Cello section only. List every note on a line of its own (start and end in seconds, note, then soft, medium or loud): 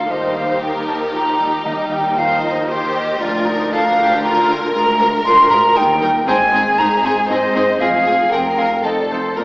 0.00 0.11 D2 soft
0.11 1.62 D#2 soft
1.65 3.17 D#2 medium
3.21 4.71 D2 medium
4.74 5.19 D2 medium
5.25 5.70 D2 medium
5.76 6.21 D#2 medium
6.28 6.72 G#2 medium
6.78 7.23 G#2 medium
7.29 7.74 G#2 medium
7.80 8.26 F2 medium
8.32 8.78 F2 medium
8.84 9.31 F2 medium
9.37 9.44 A#2 medium